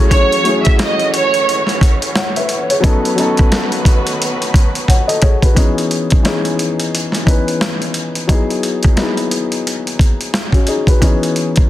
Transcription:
Already playing: E3 F#3 A3 C#4 E4 F#4 G#4 C#5
0.09 F#3 A3 C#4 E4 C#5, kick, closed hi-hat
0.14 G#4
0.32 closed hi-hat
0.43 F#3 A3 C#4 E4, closed hi-hat
0.47 G#4
0.63 E5, kick, closed hi-hat
0.79 D#5, snare, closed hi-hat
0.99 closed hi-hat
1.13 C#5, closed hi-hat
1.34 closed hi-hat
1.49 closed hi-hat
1.67 snare, closed hi-hat
1.81 kick, closed hi-hat
2.02 closed hi-hat
2.15 C#5 F#5, snare, closed hi-hat
2.36 B4 E5, closed hi-hat
2.49 closed hi-hat
2.70 G#4 C#5, closed hi-hat
2.80 D#3 F#3 A3 B3 C#4 D#4 F#4 B4, kick, closed hi-hat
2.85 A4
3.05 closed hi-hat
3.15 F#3 B3 C#4 D#4, closed hi-hat
3.20 A4
3.37 kick, closed hi-hat
3.52 snare, closed hi-hat
3.72 closed hi-hat
3.85 kick, closed hi-hat
4.07 closed hi-hat
4.22 closed hi-hat
4.42 closed hi-hat
4.54 kick, closed hi-hat
4.75 closed hi-hat
4.88 C#5 F#5, kick, closed hi-hat
5.08 A4 D#5, closed hi-hat
5.22 G#4 C#5, kick, closed hi-hat
5.42 F#4 B4, kick, closed hi-hat
5.54 E3 B3 C#4 D#4, kick, closed hi-hat
5.59 G#4
5.78 closed hi-hat
5.91 closed hi-hat
6.10 kick, closed hi-hat
6.22 E3 B3 C#4 D#4, snare, closed hi-hat
6.27 G#4
6.45 closed hi-hat
6.59 closed hi-hat
6.80 closed hi-hat
6.95 closed hi-hat
7.12 snare, closed hi-hat
7.24 E3 B3 C#4 D#4, kick
7.28 B4, closed hi-hat
7.48 closed hi-hat
7.61 snare, closed hi-hat
7.82 closed hi-hat
7.94 closed hi-hat
8.15 closed hi-hat
8.27 F#3 B3 D#4 E4, kick, closed hi-hat
8.32 G#4
8.50 closed hi-hat
8.63 closed hi-hat
8.83 kick, closed hi-hat
8.96 F#3 B3 D#4 E4, snare, closed hi-hat
9.01 G#4
9.17 closed hi-hat
9.31 closed hi-hat
9.52 closed hi-hat
9.67 closed hi-hat
9.87 closed hi-hat
9.99 kick, closed hi-hat
10.21 closed hi-hat
10.34 snare, closed hi-hat
10.52 C#4 F#4, kick, closed hi-hat
10.67 D#4 G#4, closed hi-hat
10.87 F#4 B4, kick, closed hi-hat
11.00 E3 B3 C#4 D#4, kick, closed hi-hat
11.05 G#4
11.23 closed hi-hat
11.36 closed hi-hat
11.56 kick, closed hi-hat

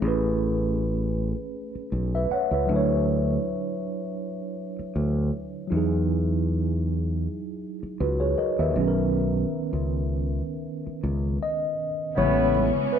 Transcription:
Already playing: A3
0.01 A1 C#4 G#4
0.08 B4
1.75 muted fingered electric bass stroke
1.92 B1
2.15 B4 E5
2.31 C#5 F#5, muted fingered electric bass stroke
2.51 C#2 B4 E5
2.66 D2 F#3 D4
2.72 E4 C#5
4.79 muted fingered electric bass stroke
4.96 D2
5.67 F#3 D#4
5.72 E2 E4
5.77 G#4
7.83 muted fingered electric bass stroke
8.00 C#2 F#4 B4
8.20 G#4 C#5
8.38 A#4 D#5, muted fingered electric bass stroke
8.59 D#2 B4 E5
8.71 D#3 B3
8.76 B1 C#4
8.81 G#4
8.87 A#4
9.73 C#2
10.87 muted fingered electric bass stroke
11.03 C#2
11.43 D#5
12.16 A1 C#3 E3 G#3 B3 C#4 E4 C#5, muted conga
12.54 muted conga, high conga
12.77 muted fingered electric bass stroke
12.93 B4

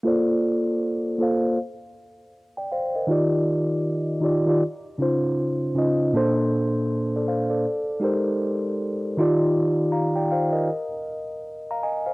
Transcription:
0.03 A#3 F4 A4 C5
0.08 D5
1.18 A#3 F4 A4 C5
1.23 F5
2.57 D5 G5
2.72 C5 F5
2.95 A#4 D#5
3.07 D#3 D#4 F4 G4
3.11 D5
4.21 D#3 D#4 F4 G4
4.25 D5
4.46 D#3 D#4 F4 G4
4.50 D5
4.98 C#3 C#4 D#4 F4
5.02 C5
5.74 C#3 C#4 D#4 F4
5.78 D#5
6.13 A#2 A#3 D4 A4
6.17 C5
7.16 A4 D5
7.28 C5 F5
7.50 A4 D5
8.00 G#3 D#4 G4 A#4
8.04 C5
9.17 D#3 D#4 F4 G4
9.21 D5
9.92 F5 A#5
10.16 D5 G5
10.32 C5 F5
10.52 A#4 D#5
11.71 F5 A#5
11.83 D#5 G#5
12.06 C5 F5

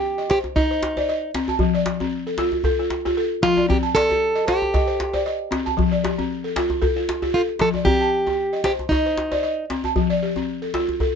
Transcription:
Already playing: G4
0.18 D#5, djembe slap
0.30 G4 C5, djembe slap
0.44 djembe tone
0.56 D#4 D#5, djembe slap, djembe bass
0.71 C5
0.83 djembe slap
0.97 C5 D5, djembe slap, djembe tone
1.08 D#5, djembe slap
1.34 C4, djembe slap
1.48 A5, djembe tone
1.59 F3, djembe bass
1.75 D5
1.86 djembe slap
2.00 C4, djembe tone
2.27 A4, djembe slap
2.38 F4, djembe slap
2.52 djembe tone
2.64 A4, djembe slap, djembe bass
2.79 F4
2.90 djembe slap
3.05 F4 G4, djembe slap, djembe tone
3.17 A4, djembe slap
3.42 F3 F4, djembe slap
3.57 D5, djembe tone
3.69 C4 G4, djembe bass
3.83 A5
3.95 A4 D5, djembe slap
4.09 G4, djembe tone
4.35 D#5, djembe slap
4.48 G4 C5, djembe slap
4.62 djembe tone
4.74 D#5, djembe slap, djembe bass
4.87 C5
5.00 djembe slap
5.14 C5 D5, djembe slap, djembe tone
5.25 D#5, djembe slap
5.51 C4, djembe slap
5.66 A5, djembe tone
5.77 F3, djembe slap, djembe bass
5.92 D5, djembe slap
6.04 G4, djembe slap
6.18 C4, djembe tone
6.44 A4
6.56 F4, djembe slap
6.70 djembe slap, djembe tone
6.82 A4, djembe bass
6.96 F4
7.09 djembe slap
7.22 F4 G4, djembe slap, djembe tone
7.34 F4 A4
7.49 djembe slap
7.59 F3 A4, djembe slap
7.74 D5, djembe tone
7.85 C4 G4, djembe bass
8.01 A5
8.26 G4, djembe tone
8.53 D#5, djembe slap
8.64 G4 C5, djembe slap
8.79 djembe tone
8.89 D#4 D#5, djembe slap, djembe bass
9.06 C5
9.18 djembe slap
9.31 C5 D5, djembe slap, djembe tone
9.43 D#5, djembe slap
9.70 C4, djembe slap
9.84 A5, djembe tone
9.96 F3, djembe bass
10.10 D5
10.23 G4
10.36 C4, djembe tone
10.62 A4, djembe slap
10.74 F4, djembe slap
10.89 djembe tone
11.00 A4, djembe slap, djembe bass

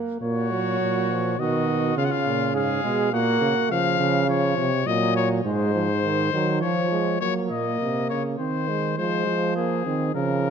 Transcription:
Already playing: A#3
0.21 A#2 A#3 F#4 C#5
0.51 F#3
0.81 A#2
1.11 F3
1.39 B2 D#3 F#4 D#5
1.97 C#3 F4 F5
2.05 F#5
2.11 F5
2.26 A#2
2.55 G#2 G#4 F5
2.83 B2 G#3
3.13 A#2 A#3 F#4 F#5
3.41 C#3
3.71 C#3 F3 F5
4.00 C#3
4.28 F3 C#5
4.58 C3
4.86 A#2 F#3 D#5
5.16 C#5
5.45 G#2 G#3 C5
5.75 F3
6.04 D#3
6.33 D#3 F#3
6.61 F3 C#5
6.91 G#3
7.21 F#3 A#3 C#5
7.50 A#2 D#5
7.81 C3
8.10 C#3 C#5
8.39 D#3 C4 C5
8.69 G#3
8.98 F3 G#3 C5
9.27 F3
9.56 A#3 G#4
9.86 D#3 C4
10.14 C#3 F3 A#4

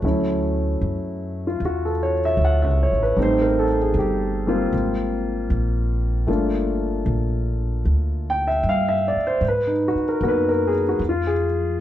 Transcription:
Already playing: F#4
0.02 D2 F#3 A3 C#4 E4
0.81 F#2
1.47 F4
1.60 E2
1.65 F#4
1.85 A4
2.03 C#5
2.25 E5
2.37 D2
2.45 F#5
2.62 C#2 E5
2.83 C#5
2.92 A1
3.03 B4
3.16 A1 G3 A3 C4 D#4
3.23 C5
3.42 A#4
3.59 A4
3.82 G#4
3.94 G1
3.99 G4
4.47 G3 A#3 C4 F4
4.72 G#1
5.50 A#1
6.27 G1 A3 A#3 D4 F4
7.06 A#1
7.85 D2
8.30 G5
8.47 E5
8.63 G2
8.69 F5
8.89 E5
9.08 D5
9.16 muted upright bass stroke
9.27 C5
9.41 G#2
9.48 B4
9.67 D#4
9.88 F#4
9.95 muted upright bass stroke
10.09 A#4
10.21 F#2 A#3 B3 D#4 F#4
10.28 B4
10.49 A#4
10.67 G#4
10.89 F#4
10.99 F2
11.09 F4
11.27 G#4

